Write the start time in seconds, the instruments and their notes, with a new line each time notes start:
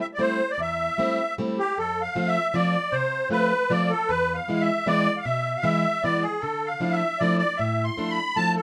0.01 accordion E5
0.14 accordion D5
0.19 steel-string acoustic guitar G3 A3 C4 E4, accordion C5
0.51 accordion D5
0.58 steel-string acoustic guitar E2, accordion E5
0.98 steel-string acoustic guitar G3 A3 C4 E4
1.38 steel-string acoustic guitar G3 A3 C4 E4
1.59 accordion G4
1.78 steel-string acoustic guitar F2, accordion A4
2.02 accordion F5
2.15 steel-string acoustic guitar F3 A3 C4 F4
2.28 accordion E5
2.54 steel-string acoustic guitar F3 A3 C4 F4, accordion D5
2.92 steel-string acoustic guitar C3, accordion C5
3.29 steel-string acoustic guitar F3 A3 C4 F4, accordion B4
3.70 steel-string acoustic guitar F3 A3 C4 F4, accordion D5
3.90 accordion A4
4.08 steel-string acoustic guitar E2, accordion B4
4.34 accordion F5
4.48 steel-string acoustic guitar E3 G#3 B3 E4
4.61 accordion E5
4.86 steel-string acoustic guitar E3 G#3 B3 E4, accordion D5
5.17 accordion F5
5.25 steel-string acoustic guitar B2, accordion E5
5.57 accordion F5
5.62 steel-string acoustic guitar E3 G#3 B3 E4, accordion E5
6.03 steel-string acoustic guitar E3 G#3 B3 E4, accordion D5
6.22 accordion G#4
6.40 steel-string acoustic guitar D3, accordion A4
6.66 accordion F5
6.80 steel-string acoustic guitar F3 A3 D4 E4
6.92 accordion E5
7.19 steel-string acoustic guitar F3 A3 D4 E4, accordion D5
7.38 accordion D5
7.57 steel-string acoustic guitar A2, accordion E5
7.84 accordion C6
7.97 steel-string acoustic guitar F3 A3 D4 E4
8.10 accordion B5
8.36 steel-string acoustic guitar F3 A3 D4 E4, accordion A5
8.56 accordion A4